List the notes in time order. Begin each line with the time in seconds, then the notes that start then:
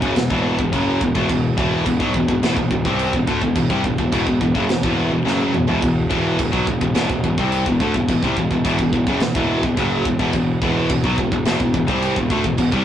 0.02 F#1 F#2 C#3, kick
0.16 E1 E2 B2, snare, china
0.30 E1 E2 B2 E3, kick
0.58 E1 E2 B2, kick
0.73 F#1 F#2 C#3 F#3, kick, china
1.01 E1 E2 B2, kick
1.15 E1 E2 B2, kick
1.29 E1 E2 B2, kick, china
1.57 E1 E2 B2 E3, kick
1.86 E1 E2 B2, kick, china
2.00 B1 B2 F#3, kick
2.14 E1 E2 B2, kick
2.28 E1 E2 B2, kick
2.43 E1 E2 B2, snare, china
2.57 E1 E2 B2, kick
2.71 E1 E2 B2, kick
2.85 C2 C3 G3 C4, kick
2.99 china
3.13 E1 E2 B2, kick
3.27 D2 D3 A3, kick
3.42 E1 E2 B2, kick
3.55 E1 E2 B2, kick, china
3.70 C2 C3 G3, kick
3.84 E1 E2 B2, kick
3.98 E1 E2 B2, kick
4.12 E1 E2 B2, kick, china
4.27 E1 E2 B2, kick
4.41 E1 E2 B2, kick
4.55 F#1 F#2 C#3, kick
4.69 E1 E2 B2, snare, china
4.83 E1 E2 B2 E3, kick
5.12 E1 E2 B2
5.25 F#1 F#2 C#3 F#3, snare
5.40 high tom
5.54 E1 E2 B2, mid tom
5.67 E1 E2 B2, floor tom
5.82 E1 E2 B2, kick, china
6.10 E1 E2 B2 E3, kick
6.39 E1 E2 B2, kick, china
6.52 B1 B2 F#3, kick
6.66 E1 E2 B2, kick
6.81 E1 E2 B2, kick
6.94 E1 E2 B2, snare, china
7.10 E1 E2 B2, kick
7.24 E1 E2 B2, kick
7.38 C2 C3 G3 C4, kick
7.52 china
7.66 E1 E2 B2, kick
7.80 D2 D3 A3, kick
7.94 E1 E2 B2, kick
8.08 E1 E2 B2, kick, china
8.23 C2 C3 G3, kick
8.37 E1 E2 B2, kick
8.51 E1 E2 B2, kick
8.65 E1 E2 B2, kick, china
8.79 E1 E2 B2, kick
8.93 E1 E2 B2, kick
9.07 F#1 F#2 C#3, kick
9.20 E1 E2 B2, snare, china
9.35 E1 E2 B2 E3, kick
9.63 E1 E2 B2, kick
9.77 F#1 F#2 C#3 F#3, kick, china
10.05 E1 E2 B2, kick
10.19 E1 E2 B2, kick
10.33 E1 E2 B2, kick, china
10.62 E1 E2 B2 E3, kick
10.89 E1 E2 B2, kick, china
11.04 B1 B2 F#3, kick
11.18 E1 E2 B2, kick
11.32 E1 E2 B2, kick
11.45 E1 E2 B2, snare, china
11.60 E1 E2 B2, kick
11.74 E1 E2 B2, kick
11.88 C2 C3 G3 C4, kick
12.02 china
12.16 E1 E2 B2, kick
12.30 D2 D3 A3, kick
12.44 E1 E2 B2, kick
12.57 E1 E2 B2, kick, china
12.72 C2 C3 G3, kick